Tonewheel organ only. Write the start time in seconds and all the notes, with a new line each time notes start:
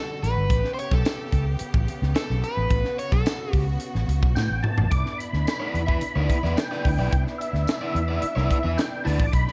4.35 G5
4.63 A5
4.91 D6
5.18 B5
5.73 B5
6.57 G5
7.11 G5
7.38 E5
8.77 G5
9.04 A5
9.26 D6
9.32 B5